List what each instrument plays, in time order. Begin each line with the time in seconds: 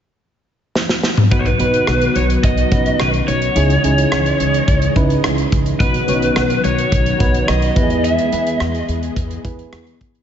0.75 snare
0.89 snare
1.03 snare
1.17 mid tom
1.31 upright bass B1, string machine D#3 F#3 B3 F#4, fm electric piano B3 D#4 F#4 B4, lead electric guitar B4, kick, closed hi-hat
1.39 lead electric guitar C#5
1.46 lead electric guitar B4, closed hi-hat
1.59 upright bass B1, fm electric piano B3 D#4 F#4 B4, closed hi-hat
1.74 closed hi-hat
1.87 upright bass B1, cross-stick, closed hi-hat
2.01 closed hi-hat
2.15 upright bass B1, lead electric guitar C#5, closed hi-hat
2.30 closed hi-hat
2.44 upright bass B1, lead electric guitar D#5, kick, closed hi-hat
2.57 closed hi-hat
2.71 upright bass B1, fm electric piano B3 C#4 F#4 B4, kick, closed hi-hat
2.78 fm electric piano D#4
2.86 closed hi-hat
3.00 upright bass B1, lead electric guitar B4, cross-stick, closed hi-hat
3.14 closed hi-hat
3.28 upright bass B1, lead electric guitar C#5, closed hi-hat
3.42 closed hi-hat
3.55 upright bass C#2, string machine C#3 E3 G#3 D#5, fm electric piano C#4 D#4 E4 G#4, closed hi-hat
3.70 closed hi-hat
3.84 upright bass C#2, fm electric piano C#4 D#4 E4 G#4, closed hi-hat
3.98 closed hi-hat
4.12 upright bass C#2, cross-stick, closed hi-hat
4.26 closed hi-hat
4.40 upright bass C#2, closed hi-hat
4.54 closed hi-hat
4.68 upright bass C#2, kick, closed hi-hat
4.82 closed hi-hat
4.96 upright bass C#2, fm electric piano C#4 D#4 E4 B4, kick, closed hi-hat
5.10 closed hi-hat
5.24 upright bass C#2, cross-stick, closed hi-hat
5.38 closed hi-hat
5.52 upright bass C#2, kick, closed hi-hat
5.66 closed hi-hat
5.80 upright bass B1, string machine D#3 F#3 B3 F#4, fm electric piano B3 D#4 F#4 B4, lead electric guitar B4, kick, closed hi-hat
5.94 closed hi-hat
6.08 upright bass B1, fm electric piano B3 C#4 F#4 C#5, closed hi-hat
6.14 fm electric piano D#4
6.22 closed hi-hat
6.36 upright bass B1, cross-stick, closed hi-hat
6.50 closed hi-hat
6.64 upright bass B1, lead electric guitar C#5, closed hi-hat
6.78 closed hi-hat
6.92 upright bass B1, kick, closed hi-hat
7.06 closed hi-hat
7.20 upright bass B1, fm electric piano B3 D#4 F#4 B4, kick, closed hi-hat
7.34 closed hi-hat
7.48 upright bass B1, lead electric guitar D#5, cross-stick, closed hi-hat
7.62 closed hi-hat
7.76 upright bass E2, string machine E3 G#3 G#4, fm electric piano B3 E4 G4 B4, kick, closed hi-hat
7.83 fm electric piano G#4
7.90 closed hi-hat
8.04 lead electric guitar E5, closed hi-hat
8.18 closed hi-hat
8.32 upright bass E2, fm electric piano B3 E4 G#4 B4, closed hi-hat
8.47 closed hi-hat
8.60 upright bass E2, lead electric guitar D#5, cross-stick, closed hi-hat
8.75 closed hi-hat
8.89 upright bass E2, closed hi-hat
9.03 closed hi-hat
9.16 upright bass E2, kick, closed hi-hat
9.30 closed hi-hat
9.44 upright bass E2, fm electric piano B3 E4 G#4 B4, kick, closed hi-hat
9.59 closed hi-hat
9.73 upright bass E2, cross-stick, closed hi-hat
9.87 closed hi-hat
10.01 upright bass E2, kick, closed hi-hat
10.15 closed hi-hat